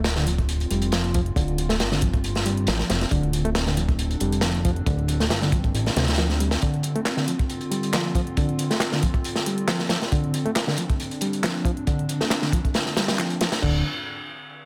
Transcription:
Already playing: analog synth bass D1, ambient pad D3 C4 F4
0.04 snare, closed hi-hat
0.16 reed electric piano D3, snare, closed hi-hat
0.27 reed electric piano F3, closed hi-hat
0.38 kick, closed hi-hat
0.49 closed hi-hat
0.60 closed hi-hat
0.71 analog synth bass F1, reed electric piano G3, closed hi-hat
0.82 closed hi-hat
0.92 reed electric piano F3, snare, closed hi-hat
1.04 closed hi-hat
1.14 reed electric piano F3, kick, closed hi-hat
1.26 closed hi-hat
1.36 analog synth bass D1, reed electric piano D3, kick, closed hi-hat
1.48 closed hi-hat
1.58 closed hi-hat
1.69 reed electric piano A3, snare, closed hi-hat
1.80 analog synth bass G1, snare, closed hi-hat
1.92 reed electric piano D3, snare, closed hi-hat
2.01 reed electric piano F3, kick, closed hi-hat
2.14 kick, closed hi-hat
2.24 closed hi-hat
2.35 snare, closed hi-hat
2.46 reed electric piano G3, closed hi-hat
2.57 closed hi-hat
2.67 analog synth bass A1, reed electric piano F3, snare, closed hi-hat
2.79 snare, closed hi-hat
2.89 analog synth bass F1, reed electric piano F3, snare, closed hi-hat
3.01 snare, closed hi-hat
3.11 analog synth bass D1, reed electric piano D3, ambient pad D4, kick, closed hi-hat
3.23 closed hi-hat
3.33 closed hi-hat
3.45 reed electric piano A3, closed hi-hat
3.55 snare, closed hi-hat
3.67 reed electric piano D3, snare, closed hi-hat
3.77 reed electric piano F3, closed hi-hat
3.89 kick, closed hi-hat
3.99 closed hi-hat
4.11 closed hi-hat
4.20 analog synth bass F1, reed electric piano G3, closed hi-hat
4.32 closed hi-hat
4.41 reed electric piano F3, snare, closed hi-hat
4.54 closed hi-hat
4.65 reed electric piano F3, kick, closed hi-hat
4.76 closed hi-hat
4.86 analog synth bass D1, reed electric piano D3, kick, closed hi-hat
4.99 closed hi-hat
5.08 closed hi-hat
5.20 reed electric piano A3, snare, closed hi-hat
5.30 analog synth bass G1, snare, closed hi-hat
5.42 reed electric piano D3, snare, closed hi-hat
5.52 reed electric piano F3, kick, closed hi-hat
5.64 kick, closed hi-hat
5.74 analog synth bass A1, closed hi-hat
5.86 snare, closed hi-hat
5.96 analog synth bass D2, reed electric piano C3, snare, closed hi-hat
6.02 snare, closed hi-hat
6.08 snare, closed hi-hat
6.13 snare, closed hi-hat
6.18 reed electric piano F3, snare, closed hi-hat
6.30 snare, closed hi-hat
6.40 reed electric piano G3, closed hi-hat
6.51 snare, closed hi-hat
6.62 reed electric piano D3, ambient pad F4, kick, closed hi-hat
6.74 closed hi-hat
6.83 closed hi-hat
6.96 reed electric piano A3, closed hi-hat
7.05 snare, clap, closed hi-hat
7.17 reed electric piano D3, snare, closed hi-hat
7.28 reed electric piano F3, closed hi-hat
7.39 kick, closed hi-hat
7.49 closed hi-hat
7.61 closed hi-hat
7.71 reed electric piano G3, closed hi-hat
7.83 closed hi-hat
7.93 reed electric piano F3, snare, clap, closed hi-hat
8.05 closed hi-hat
8.15 reed electric piano F3, kick, closed hi-hat
8.27 closed hi-hat
8.37 reed electric piano D3, kick, closed hi-hat
8.49 closed hi-hat
8.59 closed hi-hat
8.71 reed electric piano A3, snare, closed hi-hat
8.80 snare, clap, closed hi-hat
8.92 reed electric piano D3, snare, closed hi-hat
9.03 reed electric piano F3, kick, closed hi-hat
9.14 kick, closed hi-hat
9.24 closed hi-hat
9.36 snare, closed hi-hat
9.46 reed electric piano G3, closed hi-hat
9.58 closed hi-hat
9.68 reed electric piano F3, snare, clap, closed hi-hat
9.80 snare, closed hi-hat
9.89 reed electric piano F3, snare, closed hi-hat
10.02 snare, closed hi-hat
10.12 reed electric piano D3, ambient pad D4, kick, closed hi-hat
10.24 closed hi-hat
10.34 closed hi-hat
10.46 reed electric piano A3, closed hi-hat
10.55 snare, clap, closed hi-hat
10.67 reed electric piano D3, snare, closed hi-hat
10.77 reed electric piano F3, closed hi-hat
10.90 kick, closed hi-hat
11.00 closed hi-hat
11.11 closed hi-hat
11.21 reed electric piano G3, closed hi-hat
11.33 closed hi-hat
11.43 reed electric piano F3, snare, clap, closed hi-hat
11.55 closed hi-hat
11.65 reed electric piano F3, kick, closed hi-hat
11.77 closed hi-hat
11.87 reed electric piano D3, kick, closed hi-hat
11.99 closed hi-hat
12.09 closed hi-hat
12.21 reed electric piano A3, snare, closed hi-hat
12.30 snare, clap, closed hi-hat
12.42 reed electric piano D3, snare, closed hi-hat
12.52 reed electric piano F3, kick, closed hi-hat
12.65 kick, closed hi-hat
12.74 snare, closed hi-hat
12.86 snare, closed hi-hat
12.97 reed electric piano G3, snare, closed hi-hat
13.08 snare, closed hi-hat
13.19 reed electric piano F3, snare, clap, closed hi-hat
13.30 closed hi-hat
13.41 reed electric piano F3, snare, closed hi-hat
13.52 snare, closed hi-hat
13.62 analog synth bass D1, reed electric piano D3, kick, crash

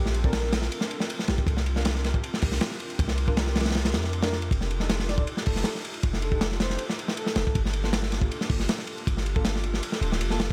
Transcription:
Already playing: 808-style bass A#1, analog synth pad C4 D4 F4 A4 A#4, soft synth lead G4
0.06 snare
0.14 ride
0.24 synth stab C4 D4 A4, soft synth lead A#4, kick
0.33 snare, ride
0.43 snare
0.53 snare, ride
0.62 snare
0.72 ride
0.81 snare
0.91 ride
1.00 snare
1.10 ride
1.19 snare
1.28 808-style bass A#1, soft synth lead G4, snare, ride
1.38 soft synth lead G4, kick
1.47 808-style bass C2, analog synth pad C4 D4 F4 G4 A#4, kick, ride
1.57 snare
1.66 ride
1.76 synth stab D4 F4 A#4, snare
1.85 snare, ride
1.95 snare
2.04 snare, ride
2.14 kick
2.24 ride
2.34 snare
2.42 808-style bass C2, kick, open hi-hat
2.52 snare
2.61 snare, ride
2.71 snare
2.80 ride
2.90 ride
2.99 808-style bass C2, analog synth pad C4 D4 F4 G4 A#4, kick, ride
3.08 snare
3.18 ride
3.28 synth stab D4 F4 A#4, kick
3.37 snare, ride
3.46 snare
3.56 snare, ride
3.60 snare, ride
3.65 snare, ride
3.70 snare, ride
3.75 snare, ride
3.85 snare, ride
3.94 808-style bass F2, snare, ride
4.04 snare
4.13 ride
4.23 synth stab D4 F4 A#4, snare, ride
4.32 snare
4.42 ride
4.51 808-style bass F1, analog synth pad D4 D#4 F4 G4 A4, kick, ride
4.61 snare
4.71 ride
4.80 synth stab D4 D#4 G4 A4, snare
4.89 snare, ride
4.99 snare
5.08 soft synth lead D5, snare, ride
5.18 soft synth lead D5, kick
5.27 ride
5.37 snare
5.46 808-style bass F1, soft synth lead A4, kick, open hi-hat
5.56 snare
5.64 snare, ride
5.75 snare
5.85 ride
5.94 ride
6.03 808-style bass F1, analog synth pad D4 D#4 F4 G4 A4, kick, ride
6.13 snare
6.22 soft synth lead A4, ride
6.32 synth stab D4 D#4 G4 A4, kick
6.41 snare, ride
6.52 snare
6.60 soft synth lead C5, snare, ride
6.70 snare
6.78 ride
6.89 snare
6.99 ride
7.08 snare
7.17 soft synth lead A4, ride
7.26 snare
7.36 808-style bass F1, snare, ride
7.47 kick
7.55 808-style bass G1, analog synth pad A#3 D4 F4 G4 A4, kick, ride
7.65 snare
7.73 ride
7.84 synth stab A#3 F4 A4, snare
7.93 snare, ride
8.03 snare
8.12 snare, ride
8.21 kick
8.31 ride
8.41 snare
8.50 808-style bass G1, kick, open hi-hat
8.60 snare
8.69 snare, ride
8.78 snare
8.87 ride
8.98 ride
9.07 808-style bass G1, analog synth pad A#3 D4 F4 G4 A4, kick, ride
9.17 snare
9.26 ride
9.36 synth stab A#3 F4 A4, kick
9.45 snare, ride
9.56 snare
9.63 ride
9.74 snare
9.83 ride
9.92 snare
10.01 808-style bass D1, ride
10.12 snare
10.20 808-style bass F1, ride
10.30 synth stab A#3 F4 A4, snare
10.40 snare, ride

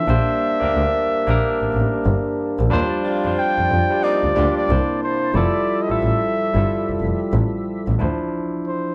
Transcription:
Already playing: flugelhorn E5
0.06 double bass A#1, tonewheel organ G3 A#3 D4, tine electric piano A#3 D4 G4 C5
0.60 double bass D2, tine electric piano A#3 D4 G4 A#4
0.74 double bass D2
1.27 double bass A#1, tine electric piano A#3 D4 G4 A#4
1.61 double bass A1
1.73 double bass A1
2.06 double bass G1
2.60 double bass A#1
2.70 double bass D#2, tonewheel organ F3 D5, tine electric piano G3 D4 F4 C5
3.03 horn section C4 D4 F4
3.24 double bass F2, tine electric piano G3 D4 F4 C5
3.39 flugelhorn G5
3.59 double bass F2
3.70 double bass F2
3.90 tine electric piano G3 D4 F4 G4
4.02 horn section A#3 C4 D#4, flugelhorn D5
4.24 double bass D2
4.35 double bass D2, tine electric piano G3 D4 F4 G4, horn section G3 A#3 D4
4.58 flugelhorn D5
4.68 double bass C2, tonewheel organ C3 A#3 E4, tine electric piano A#3 D4 E4 C5
5.03 flugelhorn C5
5.34 double bass F1, tonewheel organ F3 G4 A4 E5, tine electric piano G3 E4 F4 A4, flugelhorn D5
5.82 flugelhorn D#5
5.88 double bass A1, tine electric piano G3 E4 F4 A4, flugelhorn E5
6.01 double bass A1
6.53 double bass G1, tine electric piano G3 E4 F4 A4
6.89 double bass F1
7.01 double bass F1
7.34 double bass A1
7.88 double bass A1
7.98 double bass D2, tine electric piano E3 D4 E4 C5
8.04 tine electric piano F3
8.67 flugelhorn C5

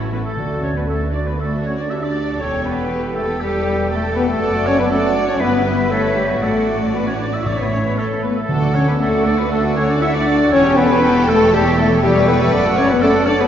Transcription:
Already playing: double bass section A1, french horn section E3, viola section C#4 E4, cello section F#4
0.10 french horn section A3 B3, oboe B4, violin section B4
0.23 french horn section A3, violin section A4, oboe A4
0.37 cello section D2, double bass section D2, timpani D3, viola section F#4, clarinet F#4, flute D5
0.61 french horn section C#4, oboe C#5, violin section C#5
0.75 french horn section B3, violin section B4, oboe B4
0.86 french horn section A3, viola section F#4, clarinet F#4, violin section A4, oboe A4, flute D5
1.13 french horn section D4, violin section D5, oboe D5
1.26 french horn section B3, violin section B4, oboe B4
1.39 french horn section A3, viola section F#4, clarinet F#4, violin section F#4 A4, oboe A4, flute D5
1.64 french horn section C#4, violin section C#5, oboe C#5
1.78 french horn section D4, violin section D5, oboe D5
1.89 french horn section E4, clarinet G4, violin section A4 E5, oboe E5
2.02 french horn section D4, violin section D5, oboe D5
2.39 double bass section E1, cello section E2, french horn section C#4, viola section G4 A4, clarinet A4, violin section C#5, oboe C#5, flute G5
2.64 french horn section B3, oboe B4, violin section B4
2.91 violin section G4
3.15 french horn section A3, oboe A4, violin section A4 B4
3.40 french horn section G3, oboe G4, violin section G4, viola section G4 A4, clarinet A4, flute G5
3.90 french horn section A3, viola section G4 A4, oboe A4, clarinet A4, violin section A4, flute G5
4.15 french horn section B3, oboe B4, violin section B4
4.28 french horn section A3, violin section A4, oboe A4
4.40 double bass section F#1, cello section F#2, viola section F#4 D5, clarinet D5, flute F#5
4.66 french horn section C#4, oboe C#5, violin section C#5
4.78 french horn section B3, violin section B4, oboe B4
4.90 french horn section A3, viola section F#4 D5, oboe A4, violin section A4, clarinet D5, flute F#5
5.15 french horn section D4, violin section D5, oboe D5
5.28 french horn section C#4, violin section C#5, oboe C#5
5.39 double bass section G1, cello section G2, french horn section B3, viola section E4 B4, violin section G4 B4, clarinet B4, oboe B4, flute E5
5.65 french horn section B3, violin section B4, oboe B4
5.90 french horn section A3, violin section A4 B4, oboe A4, clarinet C#5
6.16 french horn section G3, oboe G4, violin section G4
6.29 french horn section F#3, oboe F#4, violin section F#4
6.41 double bass section A1, cello section A2, french horn section A3, violin section F#4 A4, viola section F#4 D5, oboe A4, clarinet D5, flute F#5
6.94 french horn section B3, oboe B4, violin section B4
7.07 french horn section C#4, oboe C#5, violin section C#5
7.19 french horn section D4, oboe D5, violin section D5
7.33 french horn section E4, oboe E5, violin section E5
7.46 double bass section A1, cello section A2, timpani A2, french horn section D4, viola section E4 C#5, clarinet C#5, violin section D5, oboe D5, flute E5
7.59 french horn section B3, violin section B4, oboe B4
7.72 french horn section C#4, oboe C#5, violin section C#5
7.85 french horn section B3, violin section B4, oboe B4
7.97 french horn section A3, viola section E4 C#5, violin section A4, oboe A4, clarinet C#5, flute E5
8.22 french horn section B3, oboe B4, violin section B4
8.36 french horn section A3, oboe A4, violin section A4
8.49 cello section D2, double bass section D2, timpani D3, viola section D4 A4, violin section A4, clarinet A4, flute F#5
8.61 viola section F#4 D5
8.74 french horn section C#4, viola section D4 A4, oboe C#5, violin section C#5
8.86 french horn section B3, viola section F#4 D5, oboe B4, violin section B4
9.00 french horn section A3, viola section D4 A4, violin section F#4 A4, oboe A4, clarinet A4, flute F#5
9.13 viola section F#4 D5
9.25 french horn section D4, viola section D4 A4, oboe D5, violin section D5
9.38 french horn section B3, viola section F#4 D5, oboe B4, violin section B4
9.50 french horn section A3, viola section D4 A4, oboe A4, clarinet A4, violin section A4, flute F#5
9.65 viola section F#4 D5
9.76 french horn section C#4, viola section D4 A4, oboe C#5, violin section C#5
9.89 french horn section D4, viola section F#4 D5, oboe D5, violin section D5
10.01 viola section D4 A4, french horn section E4, oboe E5, violin section E5
10.14 french horn section D4, viola section F#4 D5, oboe D5, violin section D5
10.28 viola section D4 A4
10.41 viola section F#4 D5
10.52 double bass section E1, cello section E2, french horn section C#4, viola section E4 A4, clarinet A4, violin section A4 C#5, oboe C#5, flute G5
10.65 viola section G4 C#5
10.77 french horn section B3, viola section E4 A4, oboe B4, violin section B4
10.90 viola section G4 C#5
11.02 viola section E4 A4
11.16 viola section G4 C#5
11.28 french horn section A3, viola section E4 A4, violin section A4, oboe A4
11.40 viola section G4 C#5
11.53 french horn section G3, viola section E4 A4, violin section G4, oboe G4, clarinet A4, flute G5
11.65 viola section G4 C#5
11.77 french horn section A3, viola section E4 A4, oboe A4, violin section A4
11.90 viola section G4 C#5
12.00 french horn section G3, viola section E4 A4, violin section G4 B4, oboe G4, clarinet A4, flute G5
12.14 viola section G4 C#5
12.27 french horn section B3, viola section E4 A4, violin section B4, oboe B4
12.39 french horn section A3, viola section G4 C#5, violin section A4, oboe A4
12.52 double bass section F#1, cello section F#2, viola section A4 D5, clarinet D5, flute F#5
12.64 viola section F#4 F#5
12.76 french horn section C#4, viola section A4 D5, oboe C#5, violin section C#5
12.89 french horn section B3, viola section F#4 F#5, violin section B4, oboe B4
13.01 french horn section A3, violin section A4, viola section A4 D5, oboe A4, clarinet D5, flute F#5
13.14 viola section F#4 F#5
13.26 french horn section D4, viola section A4 D5, clarinet C#5, violin section D5, oboe D5
13.40 french horn section B3, viola section F#4 F#5, oboe B4, violin section B4

